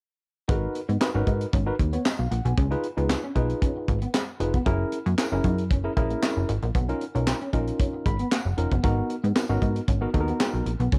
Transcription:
0.48 G#1 G#3 D#4 F#4 A#4 B4, kick, closed hi-hat
0.75 muted clean electric guitar stroke, closed hi-hat
0.89 G#2 B3, closed hi-hat
1.00 D#4 F#4 A#4 B4, muted clean electric guitar stroke, snare, clap, tambourine
1.14 G#1 C#4 D#4 F#4 A#4 B4
1.27 G#2 D#4, kick, closed hi-hat
1.41 closed hi-hat
1.53 G#1 C#4, kick, closed hi-hat
1.66 D#4 F#4 A#4 B4, muted clean electric guitar stroke
1.79 D#2, kick, closed hi-hat
1.93 B3 C#5, closed hi-hat
2.05 G#3 D#5, snare, clap, tambourine
2.19 B1 F5
2.31 A#1 F#5, muted clean electric guitar stroke, closed hi-hat
2.45 B1 B3 G#5, closed hi-hat
2.57 C#2 C#4, kick, closed hi-hat
2.71 D#4 F4 G#4 B4, closed hi-hat
2.83 muted clean electric guitar stroke, closed hi-hat
2.97 C#2 B3 D#4 F4 G#4 B4, closed hi-hat
3.10 muted clean electric guitar stroke, snare, clap, tambourine
3.24 C#4
3.35 B1 D#4 F4 G#4 B4, kick, closed hi-hat
3.50 closed hi-hat
3.62 C#4, kick, closed hi-hat
3.76 muted clean electric guitar stroke
3.88 G#1, kick, closed hi-hat
4.01 B3, closed hi-hat
4.14 G#3, snare, clap, tambourine
4.40 F1 D#4 F4 G#4 B4, muted clean electric guitar stroke, closed hi-hat
4.54 B3, kick, closed hi-hat
4.66 F#1 F#3 C#4 E4 G#4 A#4, kick, closed hi-hat
4.92 muted clean electric guitar stroke, closed hi-hat
5.06 F#2 A#3, closed hi-hat
5.18 C#4 E4 G#4 A#4, snare, clap, tambourine
5.32 F#1 C#4 E4 G#4 A#4
5.44 F#2 D#4, kick, closed hi-hat
5.58 closed hi-hat
5.70 F#1 C#4, kick, closed hi-hat
5.84 C#4 E4 G#4 A#4, muted clean electric guitar stroke
5.96 A#1 C#4 E4 G#4 A#4, kick, closed hi-hat
6.10 A#3, closed hi-hat
6.23 G#3, snare, clap, tambourine
6.37 F#1
6.49 G#1, muted clean electric guitar stroke, closed hi-hat
6.62 A#1 A#3, closed hi-hat
6.75 B1 B3, kick, closed hi-hat
6.89 C#4 D#4 F4 A#4, closed hi-hat
7.01 muted clean electric guitar stroke, closed hi-hat
7.15 B1 C#4 D#4 F4 A#4, closed hi-hat
7.27 muted clean electric guitar stroke, snare, clap, tambourine
7.41 C#4, closed hi-hat
7.53 A#1 C#4 D#4 F4 A#4, kick, closed hi-hat
7.67 closed hi-hat
7.79 C#4, kick, closed hi-hat
7.93 muted clean electric guitar stroke
8.06 G#1 B5, kick, closed hi-hat
8.19 B3, closed hi-hat
8.31 A#3 F#5, snare, clap, tambourine
8.45 F#1
8.57 F1 C#4 D#4 F4 A#4, muted clean electric guitar stroke, closed hi-hat
8.71 F#1 B3, kick, closed hi-hat
8.83 G#1 G#3 B3 D#4 F#4 A#4, kick, closed hi-hat
9.10 muted clean electric guitar stroke, closed hi-hat
9.23 G#2 B3, closed hi-hat
9.35 B3 D#4 F#4 A#4, muted clean electric guitar stroke, snare, clap, tambourine
9.49 G#1 B3 C#4 D#4 F#4 A#4
9.62 G#2 D#4, kick, closed hi-hat
9.76 closed hi-hat
9.88 G#1 C#4, kick, closed hi-hat
10.01 B3 D#4 F#4 A#4, muted clean electric guitar stroke
10.14 D#2 B3 D#4 F#4 A4, kick, closed hi-hat
10.21 A#4
10.28 B3, closed hi-hat
10.40 G#3, snare, clap, tambourine
10.54 B1, closed hi-hat
10.66 A#1, muted clean electric guitar stroke, closed hi-hat
10.80 B1 B3, closed hi-hat
10.92 C#2 C#4, kick, closed hi-hat

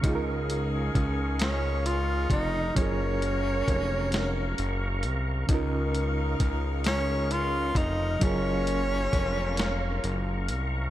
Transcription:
Already playing: A#4 F5 C#6
0.01 C#2 C#3 C#4 D#4 F4 G#4 D#5, kick, closed hi-hat
0.07 F4 G#4
0.15 A#4
0.50 closed hi-hat
0.95 C#2, kick, closed hi-hat
1.39 C#4, snare, closed hi-hat
1.86 F4, closed hi-hat
2.30 F1 D#4, kick, closed hi-hat
2.75 F#1 F#3 A#3 C#4 F4 F#4 A#4 A#5, kick, closed hi-hat
2.80 G#4 A#4
3.22 closed hi-hat
3.68 F1, kick, closed hi-hat
4.12 snare, closed hi-hat
4.58 F#1, closed hi-hat
5.03 C2, closed hi-hat
5.47 C#2 C#3 C#4 D#4 F4 A#4 D#5, kick, closed hi-hat
5.53 F4 A#4
5.95 closed hi-hat
6.40 C#2, kick, closed hi-hat
6.84 C#4, snare, closed hi-hat
7.31 F4, closed hi-hat
7.75 F1 D#4, kick, closed hi-hat
8.19 F#1 F#3 A#3 C#4 F4 A#5, kick, closed hi-hat
8.25 G#4 A#4
8.67 closed hi-hat
9.13 F1, kick, closed hi-hat
9.57 snare, closed hi-hat
10.04 F#1, closed hi-hat
10.48 C2, closed hi-hat

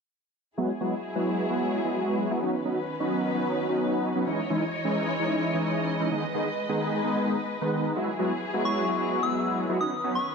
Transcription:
0.57 F#3 G#3 B3 E4 F#4 G#4
0.81 F#3 G#3 B3 E4 F#4
1.15 F#3 G#3 B3 E4 F#4
1.50 F#3 G#3 B3 E4 F#4
1.84 F#3 G#3 B3 E4 F#4
2.31 F#3 G#3 B3 E4 F#4
2.42 D#3 F#3 B3 C#4 D#4 F#4 B4
2.65 F#3 B3 C#4 D#4 F#4
3.00 F#3 B3 C#4 D#4 F#4
3.34 F#3 B3 C#4 D#4 F#4
3.69 F#3 B3 C#4 D#4 F#4
4.15 F#3 B3 C#4 D#4 F#4
4.27 E3 G#3 C#4 D#4 E4 C#5 D#5
4.50 E3 G#3 C#4 D#4 E4
4.84 E3 G#3 C#4 D#4 E4
5.19 E3 G#3 C#4 D#4 E4
5.54 E3 G#3 C#4 D#4 E4
6.00 E3 G#3 C#4 D#4 E4
6.11 D#3 G#3 B3 D#4 G#4 B4
6.34 D#3 G#3 B3 D#4 G#4
6.69 D#3 G#3 B3 D#4 G#4
7.04 D#3 G#3 B3 D#4 G#4
7.61 D#3 G#3 B3 D#4 B4
7.96 F#3 G#3 B3 E4 F#4 G#4
8.19 F#3 G#3 B3 E4 F#4
8.54 F#3 G#3 B3 E4 F#4
8.65 C#6
8.88 F#3 G#3 B3 E4 F#4
9.23 F#3 G#3 B3 E4 F#4 E6
9.69 F#3 G#3 B3 E4 F#4
9.81 D#3 F#3 B3 C#4 D#4 F#4 B4 D#6
10.04 F#3 B3 C#4 D#4 F#4
10.15 C#6

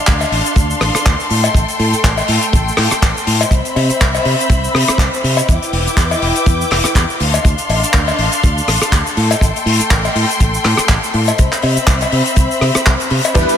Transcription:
Already playing: D4 A4 F5 C6
0.07 D2, kick, clap, closed hi-hat, shaker
0.21 cowbell, shaker
0.32 A1, open hi-hat
0.46 closed hi-hat, shaker
0.56 D2, kick, closed hi-hat, shaker
0.70 shaker
0.81 A1, cross-stick, open hi-hat
0.95 cross-stick, closed hi-hat, shaker
1.05 D2, kick, clap, closed hi-hat, shaker
1.20 shaker
1.30 A2 A3 G5, open hi-hat
1.44 closed hi-hat, cowbell, shaker
1.55 A1, kick, closed hi-hat, shaker
1.68 closed hi-hat, shaker
1.79 A2, open hi-hat
1.93 muted fingered electric bass stroke, closed hi-hat, shaker
2.04 A1, kick, clap, closed hi-hat, shaker
2.18 cowbell, shaker
2.28 A2, open hi-hat
2.42 closed hi-hat, shaker
2.53 A1, kick, closed hi-hat, shaker
2.68 shaker
2.77 A2, cross-stick, clap, open hi-hat
2.91 muted fingered electric bass stroke, cross-stick, closed hi-hat, shaker
3.02 A1, kick, clap, closed hi-hat, shaker
3.17 shaker
3.27 A2, open hi-hat
3.41 closed hi-hat, cowbell, shaker
3.51 C2 C4 C5 E5 B5, kick, closed hi-hat, shaker
3.65 closed hi-hat, shaker
3.76 C3, open hi-hat, cowbell
3.90 muted fingered electric bass stroke, closed hi-hat, shaker
4.01 C2, kick, clap, closed hi-hat, shaker
4.15 cowbell, shaker
4.25 C3, open hi-hat
4.40 closed hi-hat, shaker
4.50 C2, kick, closed hi-hat, shaker
4.64 shaker
4.74 C3, cross-stick, open hi-hat
4.88 muted fingered electric bass stroke, cross-stick, closed hi-hat, shaker
4.98 C2, kick, clap, closed hi-hat, shaker
5.14 shaker
5.24 C3, open hi-hat
5.37 closed hi-hat, cowbell, shaker
5.48 E2 E4 B4 G5 D6, kick, closed hi-hat, shaker
5.62 closed hi-hat, shaker
5.73 E1, open hi-hat
5.87 muted fingered electric bass stroke, closed hi-hat, shaker
5.97 E2, kick, clap, closed hi-hat, shaker
6.11 cowbell, shaker
6.22 E1, open hi-hat
6.36 closed hi-hat, shaker
6.46 E2, kick, closed hi-hat, shaker
6.61 shaker
6.71 E1, cross-stick, clap, open hi-hat
6.84 muted fingered electric bass stroke, cross-stick, closed hi-hat, shaker
6.95 E2, kick, clap, closed hi-hat, shaker
7.10 shaker
7.20 D2 D4 A4 F5 C6, open hi-hat
7.34 closed hi-hat, cowbell, shaker
7.45 D2, kick, closed hi-hat, shaker
7.58 closed hi-hat, shaker
7.69 A1, open hi-hat, cowbell
7.83 muted fingered electric bass stroke, closed hi-hat, shaker
7.93 D2, kick, clap, closed hi-hat, shaker
8.08 cowbell, shaker
8.18 A1, open hi-hat
8.32 closed hi-hat, shaker
8.43 D2, kick, closed hi-hat, shaker
8.58 shaker
8.68 A1, cross-stick, open hi-hat
8.82 cross-stick, closed hi-hat, shaker
8.92 D2, kick, clap, closed hi-hat, shaker
9.07 shaker
9.17 A2 A3 G5 C6, open hi-hat
9.31 closed hi-hat, cowbell, shaker
9.41 A1, kick, closed hi-hat, shaker
9.56 closed hi-hat, shaker
9.66 A2, open hi-hat
9.80 muted fingered electric bass stroke, closed hi-hat, shaker
9.90 A1, kick, clap, closed hi-hat, shaker
10.05 cowbell, shaker
10.15 A2, open hi-hat
10.29 closed hi-hat, shaker
10.40 A1, kick, closed hi-hat, shaker
10.54 shaker
10.65 A2, cross-stick, clap, open hi-hat
10.77 muted fingered electric bass stroke, cross-stick, closed hi-hat, shaker
10.88 A1, kick, clap, closed hi-hat, shaker
11.04 shaker
11.14 A2, open hi-hat
11.27 closed hi-hat, cowbell, shaker
11.38 C2 C4 C5 E5 B5, kick, closed hi-hat, shaker
11.52 clap, closed hi-hat, shaker
11.62 C3, open hi-hat, cowbell
11.77 muted fingered electric bass stroke, closed hi-hat, shaker
11.87 C2, kick, clap, closed hi-hat, shaker
12.01 closed hi-hat, cowbell, shaker
12.12 C3, open hi-hat
12.26 closed hi-hat, shaker
12.36 C2, kick, closed hi-hat, shaker
12.51 shaker
12.61 C3, cross-stick, open hi-hat
12.75 muted fingered electric bass stroke, cross-stick, closed hi-hat, shaker
12.86 C2, kick, clap, closed hi-hat, shaker
13.00 closed hi-hat, shaker
13.10 C3, open hi-hat
13.24 closed hi-hat, cowbell, shaker
13.34 E2 G3 B3 D4 E4 B4 D5 G5, kick, closed hi-hat, crash, shaker
13.49 closed hi-hat, shaker

